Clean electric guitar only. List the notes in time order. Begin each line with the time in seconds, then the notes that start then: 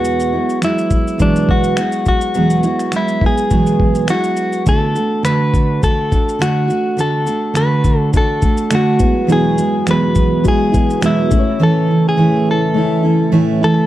Already playing: F#4
0.65 E4
1.22 D4
1.51 F#4
2.08 F#4
2.96 E4
3.26 G#4
4.10 F#4
4.69 A4
5.25 B4
5.84 A4
6.42 F#4
7.01 A4
7.57 B4
7.98 A4
8.17 A4
8.75 F#4
9.32 G#4
9.91 B4
10.48 G#4
11.06 E4
11.63 A4
12.09 G#4
12.51 A4
13.64 A4